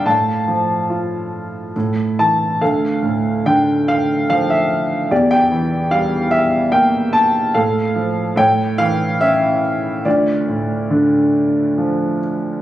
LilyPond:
<<
  \new Staff \with { instrumentName = "Grand piano" } { \time 3/4 \key d \minor \tempo 4 = 72 << { a''2~ a''8 a''8 | f''4 g''8 f''8 f''16 e''8. | d''16 g''8. f''8 e''8 g''8 a''8 | f''4 g''8 f''8 e''4 |
d''2~ d''8 r8 | } \\ { f''2~ f''8 r8 | a'4. r4. | g'4. r4. | a'4 cis''4. r8 |
f'2~ f'8 r8 | } >> }
  \new Staff \with { instrumentName = "Grand piano" } { \clef bass \time 3/4 \key d \minor a,8 f8 f'4 a,8 e8 | d,8 a,8 d4 f4 | e,8 e8 g4 bes4 | a,8 f8 a,8 e8 cis'4 |
d,8 a,8 d4 f4 | }
>>